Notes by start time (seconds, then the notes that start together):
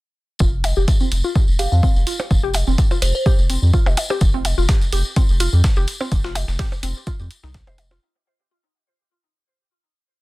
0.39 F1 F4, kick, tambourine
0.64 open hi-hat, tambourine, percussion blips
0.76 F1 G4, tambourine
0.88 kick, open hi-hat, tambourine
1.00 C4, tambourine
1.12 F1, open hi-hat, tambourine
1.24 F4, tambourine
1.36 kick, tambourine
1.48 F1, tambourine
1.59 G4 F5, open hi-hat, tambourine
1.72 F2 F5, tambourine
1.83 C4, kick, tambourine
1.96 F1, tambourine
2.07 F4, open hi-hat, tambourine
2.19 tambourine, percussion blips
2.31 F1, kick, tambourine
2.43 G4
2.54 open hi-hat, tambourine, percussion blips
2.67 F1 C4, tambourine
2.78 kick, open hi-hat, tambourine
2.91 F4, tambourine, percussion blips
3.02 F1 C5, open hi-hat, tambourine
3.15 C5, tambourine
3.26 G4, kick, tambourine
3.38 F1, tambourine
3.50 C4, open hi-hat, tambourine
3.62 F2, tambourine
3.73 F4, kick, tambourine
3.86 F1, tambourine, percussion blips
3.97 open hi-hat, tambourine, percussion blips
4.10 G4, tambourine, percussion blips
4.21 F1, kick, closed hi-hat, tambourine
4.34 C4
4.45 closed hi-hat, open hi-hat, tambourine, percussion blips
4.58 F1 F4, tambourine
4.69 kick, snare, closed hi-hat, open hi-hat, tambourine
4.82 closed hi-hat, tambourine
4.92 F1 G4, closed hi-hat, open hi-hat, tambourine
5.05 tambourine
5.16 C4, kick, closed hi-hat, tambourine
5.29 F1, tambourine
5.40 F4, closed hi-hat, open hi-hat, tambourine
5.53 F2, tambourine
5.64 kick, snare, closed hi-hat, tambourine
5.76 F1 G4, tambourine
5.87 closed hi-hat, open hi-hat, tambourine
6.00 C4, tambourine, percussion blips
6.12 F1, kick, closed hi-hat, tambourine
6.24 F4, snare
6.35 closed hi-hat, open hi-hat, tambourine, percussion blips
6.48 F1, snare, tambourine
6.59 G4, kick, snare, open hi-hat, tambourine
6.72 tambourine, percussion blips
6.83 F1 C4, closed hi-hat, open hi-hat, tambourine
6.95 tambourine
7.07 F4, kick, closed hi-hat, tambourine
7.19 F2, tambourine
7.31 closed hi-hat, open hi-hat, tambourine
7.43 C2 D#4, snare, tambourine
7.54 kick, snare, closed hi-hat, tambourine
7.67 F1 C5, closed hi-hat, tambourine, percussion blips
7.78 closed hi-hat, open hi-hat, tambourine, percussion blips
7.91 F4, snare, tambourine, percussion blips